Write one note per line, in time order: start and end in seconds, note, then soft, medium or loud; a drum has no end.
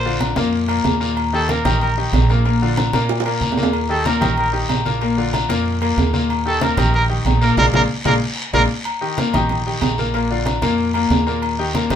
0.00 0.31 A#1 medium
0.00 0.22 C5 loud
0.05 0.31 D3 medium
0.05 0.32 D4 medium
0.05 0.32 F4 medium
0.05 high conga soft
0.20 high conga loud
0.20 low timbale medium
0.20 low agogo loud
0.20 short guiro medium
0.36 0.81 F2 loud
0.36 0.63 A#2 loud
0.36 0.63 A#3 loud
0.36 0.64 A#4 loud
0.36 high conga loud
0.36 low agogo medium
0.36 short guiro medium
0.53 high conga soft
0.53 long guiro medium
0.68 0.95 A#2 medium
0.68 0.95 A#3 medium
0.68 0.95 A#4 medium
0.68 high conga soft
0.68 low agogo loud
0.84 1.59 D#2 loud
0.84 high conga medium
0.84 low timbale medium
0.84 low agogo medium
0.84 short guiro medium
1.01 1.27 A#2 medium
1.01 1.27 A#3 medium
1.01 1.27 A#4 medium
1.01 short guiro medium
1.17 high conga soft
1.17 low agogo loud
1.17 long guiro medium
1.33 1.46 D#3 medium
1.33 1.46 D#4 medium
1.33 1.47 G4 medium
1.33 1.52 A4 loud
1.33 high conga soft
1.49 1.62 A#2 medium
1.49 1.62 A#3 medium
1.49 1.62 A#4 medium
1.49 1.81 A#4 medium
1.49 high conga medium
1.49 low timbale medium
1.49 low agogo medium
1.49 short guiro medium
1.64 2.09 A#1 medium
1.64 1.91 D#3 medium
1.64 1.91 D#4 medium
1.64 1.91 G4 medium
1.64 high conga loud
1.64 low conga medium
1.64 low agogo loud
1.64 short guiro medium
1.81 1.96 A#4 medium
1.81 high conga soft
1.81 low agogo medium
1.81 long guiro medium
1.97 2.24 D#3 medium
1.97 2.24 D#4 medium
1.97 2.24 G4 medium
1.97 high conga soft
2.13 2.87 A#1 loud
2.13 high conga medium
2.13 low timbale medium
2.13 low agogo loud
2.13 short guiro medium
2.29 2.43 A#2 medium
2.29 2.43 A#3 medium
2.29 2.43 A#4 medium
2.29 high conga medium
2.29 short guiro medium
2.45 2.58 A#2 medium
2.45 2.59 A#3 medium
2.45 2.59 A#4 medium
2.45 high conga soft
2.45 low agogo medium
2.45 long guiro medium
2.62 2.88 D3 medium
2.62 2.88 D4 medium
2.62 2.88 F4 medium
2.77 high conga loud
2.77 low timbale medium
2.77 low agogo loud
2.77 short guiro medium
2.93 3.38 A#2 medium
2.93 3.20 A#2 medium
2.93 3.20 A#3 loud
2.93 3.20 A#4 medium
2.93 high conga loud
2.93 low agogo medium
2.93 short guiro medium
3.09 high conga soft
3.09 high timbale medium
3.09 long guiro medium
3.20 high timbale loud
3.25 3.52 A#2 medium
3.25 3.52 A#3 medium
3.25 3.52 A#4 medium
3.25 high conga soft
3.25 low agogo loud
3.41 4.16 D#2 loud
3.41 high conga medium
3.41 low agogo medium
3.41 short guiro medium
3.52 low timbale medium
3.57 3.84 A#2 medium
3.57 3.84 A#3 medium
3.57 3.84 A#4 medium
3.57 high conga medium
3.57 short guiro medium
3.63 low timbale loud
3.73 low agogo loud
3.73 long guiro medium
3.89 4.02 D#3 medium
3.89 4.03 D#4 medium
3.89 4.03 G4 medium
3.89 4.08 A4 loud
3.89 high conga soft
4.05 4.18 A#2 medium
4.05 4.18 A#3 medium
4.05 4.19 A#4 medium
4.05 4.38 A#4 medium
4.05 high conga loud
4.05 low timbale medium
4.05 low agogo medium
4.05 short guiro medium
4.21 4.66 A#1 medium
4.21 4.47 D#3 medium
4.21 4.47 D#4 medium
4.21 4.48 G4 medium
4.21 high conga loud
4.21 low conga medium
4.21 low agogo loud
4.21 short guiro medium
4.37 4.53 A#4 medium
4.37 high conga soft
4.37 low agogo medium
4.37 long guiro medium
4.52 4.79 D#3 medium
4.52 4.79 D#4 medium
4.52 4.80 G4 medium
4.52 high conga soft
4.69 5.44 A#1 medium
4.69 high conga medium
4.69 low timbale medium
4.69 low agogo loud
4.69 short guiro medium
4.85 4.99 A#2 medium
4.85 4.99 A#3 medium
4.85 4.99 A#4 medium
4.85 high conga medium
4.85 short guiro medium
5.01 5.15 A#2 medium
5.01 5.15 A#3 medium
5.01 5.15 A#4 medium
5.01 high conga soft
5.01 low agogo medium
5.01 long guiro medium
5.18 5.44 D3 medium
5.18 5.44 D4 medium
5.18 5.44 F4 medium
5.18 high conga soft
5.34 high conga loud
5.34 low timbale medium
5.34 low agogo loud
5.34 short guiro medium
5.49 5.94 F2 loud
5.49 5.75 A#2 loud
5.49 5.76 A#3 loud
5.49 5.76 A#4 loud
5.49 high conga loud
5.49 low agogo medium
5.49 short guiro medium
5.66 high conga soft
5.66 long guiro medium
5.81 6.08 A#2 medium
5.81 6.08 A#3 loud
5.81 6.08 A#4 medium
5.81 high conga soft
5.81 low agogo loud
5.97 6.72 D#2 loud
5.97 high conga medium
5.97 low timbale medium
5.97 low agogo medium
5.97 short guiro medium
6.13 6.40 A#2 medium
6.13 6.40 A#3 medium
6.13 6.40 A#4 medium
6.13 high conga medium
6.13 short guiro medium
6.30 high conga soft
6.30 low agogo loud
6.30 long guiro medium
6.45 6.59 D#3 medium
6.45 6.59 D#4 medium
6.45 6.59 G4 medium
6.45 6.64 A4 loud
6.45 high conga soft
6.61 6.75 A#2 medium
6.61 6.75 A#3 medium
6.61 6.75 A#4 medium
6.61 6.94 A#4 medium
6.61 high conga loud
6.61 low timbale medium
6.61 low agogo medium
6.61 short guiro medium
6.77 7.22 A#1 loud
6.77 7.04 D#3 medium
6.77 7.04 D#4 medium
6.77 7.04 G4 medium
6.77 high conga loud
6.77 low conga medium
6.77 low agogo loud
6.77 short guiro medium
6.94 7.04 A#4 loud
6.94 high conga soft
6.94 low agogo medium
6.94 long guiro medium
7.09 7.36 D#3 medium
7.09 7.36 D#4 medium
7.09 7.36 G4 medium
7.09 high conga soft
7.25 7.55 A#1 loud
7.25 high conga medium
7.25 low timbale medium
7.25 low agogo loud
7.25 short guiro medium
7.41 7.55 A#2 medium
7.41 7.55 A#3 loud
7.41 7.55 A#4 medium
7.41 7.57 A#4 loud
7.41 short guiro medium
7.57 7.69 A#1 loud
7.57 7.68 G#3 loud
7.57 7.68 A#3 loud
7.57 7.68 D4 loud
7.57 7.66 A#4 loud
7.57 high conga loud
7.57 high timbale loud
7.57 long guiro loud
7.73 7.85 A#1 loud
7.73 7.84 G#3 loud
7.73 7.84 A#3 loud
7.73 7.84 D4 loud
7.73 7.82 A#4 loud
7.73 high conga loud
7.73 high timbale loud
7.73 long guiro loud
8.05 8.17 A#1 loud
8.05 8.16 G#3 loud
8.05 8.16 A#3 loud
8.05 8.16 D4 loud
8.05 8.14 A#4 loud
8.05 high conga loud
8.05 high timbale loud
8.05 long guiro loud
8.53 8.65 A#1 medium
8.53 8.64 G#3 loud
8.53 8.64 A#3 loud
8.53 8.64 D4 loud
8.53 8.62 A#4 loud
8.53 high conga loud
8.53 high timbale loud
8.53 long guiro loud
8.85 high conga soft
8.85 low agogo loud
8.85 long guiro medium
9.01 9.15 D#3 medium
9.01 9.15 D#4 medium
9.01 9.15 G4 medium
9.01 high conga soft
9.17 9.31 A#2 medium
9.17 9.31 A#3 medium
9.17 9.31 A#4 medium
9.17 high conga loud
9.17 low timbale medium
9.17 low agogo medium
9.17 short guiro medium
9.33 9.78 A#1 medium
9.33 9.60 D#3 medium
9.33 9.61 D#4 medium
9.33 9.61 G4 medium
9.33 high conga loud
9.33 low conga medium
9.33 low agogo loud
9.33 short guiro medium
9.49 high conga soft
9.49 low conga medium
9.49 low agogo medium
9.49 long guiro medium
9.66 9.93 D#3 medium
9.66 9.93 D#4 medium
9.66 9.93 G4 medium
9.66 high conga soft
9.81 10.56 A#1 loud
9.81 high conga medium
9.81 low timbale medium
9.81 low agogo loud
9.81 short guiro medium
9.98 10.11 A#2 medium
9.98 10.12 A#3 medium
9.98 10.12 A#4 medium
9.98 high conga medium
9.98 short guiro medium
10.14 10.27 A#2 medium
10.14 10.27 A#3 medium
10.14 10.28 A#4 medium
10.14 high conga soft
10.14 low agogo medium
10.14 long guiro medium
10.30 10.57 D3 medium
10.30 10.57 D4 medium
10.30 10.57 F4 medium
10.30 high conga soft
10.46 high conga loud
10.46 low timbale medium
10.46 low agogo loud
10.46 short guiro medium
10.62 11.07 F2 medium
10.62 10.89 A#2 loud
10.62 10.89 A#3 loud
10.62 10.89 A#4 medium
10.62 high conga loud
10.62 low agogo medium
10.62 short guiro medium
10.78 high conga soft
10.78 long guiro medium
10.94 11.21 A#2 medium
10.94 11.21 A#3 medium
10.94 11.21 A#4 medium
10.94 high conga soft
10.94 low agogo loud
11.10 11.85 D#2 medium
11.10 high conga medium
11.10 low timbale medium
11.10 low agogo medium
11.10 short guiro medium
11.27 11.53 A#2 loud
11.27 11.53 A#3 medium
11.27 11.53 A#4 medium
11.27 short guiro medium
11.42 high conga soft
11.42 low agogo loud
11.42 long guiro medium
11.59 11.72 D#3 medium
11.59 11.72 D#4 medium
11.59 11.72 G4 medium
11.59 high conga soft
11.75 11.88 A#2 medium
11.75 11.88 A#3 medium
11.75 11.88 A#4 medium
11.75 high conga loud
11.75 low timbale medium
11.75 low agogo medium
11.75 short guiro medium
11.90 11.96 A#1 loud
11.90 11.96 D#3 medium
11.90 11.96 D#4 medium
11.90 11.96 G4 medium
11.90 high conga loud
11.90 low conga medium
11.90 low agogo loud
11.90 short guiro medium